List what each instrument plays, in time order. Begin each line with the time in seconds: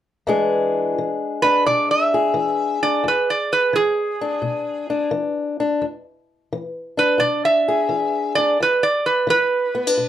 0.27 steel-string acoustic guitar E2 E3 G#3 D4 G#4
0.98 steel-string acoustic guitar E3
1.42 steel-string acoustic guitar D4, resonator guitar played with a steel bar B4
1.66 steel-string acoustic guitar B2, resonator guitar played with a steel bar D5
1.91 resonator guitar played with a steel bar E5
2.14 steel-string acoustic guitar G#4
2.34 steel-string acoustic guitar E3
2.83 steel-string acoustic guitar D4, resonator guitar played with a steel bar D5
3.04 steel-string acoustic guitar E2
3.08 resonator guitar played with a steel bar B4
3.30 resonator guitar played with a steel bar D5
3.53 resonator guitar played with a steel bar B4
3.73 steel-string acoustic guitar E3, resonator guitar played with a steel bar G#4
4.21 steel-string acoustic guitar D4
4.42 steel-string acoustic guitar B2
4.90 steel-string acoustic guitar D4
5.11 steel-string acoustic guitar E3
5.60 steel-string acoustic guitar D4
5.82 steel-string acoustic guitar E2
6.53 steel-string acoustic guitar E3
6.97 steel-string acoustic guitar D4, resonator guitar played with a steel bar B4
7.18 steel-string acoustic guitar B2, resonator guitar played with a steel bar D5
7.45 resonator guitar played with a steel bar E5
7.68 steel-string acoustic guitar G#4
7.89 steel-string acoustic guitar E3
8.35 steel-string acoustic guitar D4, resonator guitar played with a steel bar D5
8.60 steel-string acoustic guitar E2, resonator guitar played with a steel bar B4
8.83 resonator guitar played with a steel bar D5
9.06 resonator guitar played with a steel bar B4
9.27 steel-string acoustic guitar E3, resonator guitar played with a steel bar B4
9.75 steel-string acoustic guitar B3
9.87 steel-string acoustic guitar D4
9.97 steel-string acoustic guitar B2